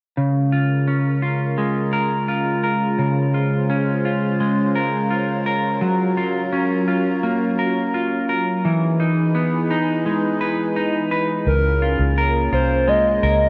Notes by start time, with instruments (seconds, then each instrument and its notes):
0.17 clean electric guitar C#3, analog synth pad G#3 C#4 F4 A#4
0.52 clean electric guitar F4
0.88 clean electric guitar C#4
1.22 clean electric guitar F4
1.58 clean electric guitar G#3
1.93 clean electric guitar A#4
2.28 clean electric guitar F4
2.64 clean electric guitar A#4
2.98 clean electric guitar C#3, analog synth pad C5
3.34 clean electric guitar F4
3.70 clean electric guitar C#4
4.05 clean electric guitar F4
4.40 clean electric guitar G#3
4.75 clean electric guitar A#4
5.11 clean electric guitar F4
5.46 clean electric guitar A#4
5.81 clean electric guitar F#3, analog synth pad F#3 A#4
6.17 clean electric guitar F4
6.53 clean electric guitar C#4
6.88 clean electric guitar F4
7.23 clean electric guitar A#3
7.59 clean electric guitar A#4
7.94 clean electric guitar F4
8.29 clean electric guitar A#4
8.65 clean electric guitar E3, analog synth pad E3 D#4 G#4 B4
9.00 clean electric guitar D#4
9.35 clean electric guitar B3
9.71 clean electric guitar D#4
10.06 clean electric guitar G#3
10.41 clean electric guitar B4
10.76 clean electric guitar D#4
11.11 clean electric guitar B4
11.47 fingered electric bass C#2, analog synth pad A#3 C#4 F4 G#4, soft synth lead A#4
11.82 clean electric guitar F4
11.99 fingered electric bass C#2
12.18 clean electric guitar A#4
12.52 fingered electric bass C2, clean electric guitar F4, soft synth lead C5
12.88 clean electric guitar G#3, soft synth lead D#5
13.23 fingered electric bass C#2, clean electric guitar A#4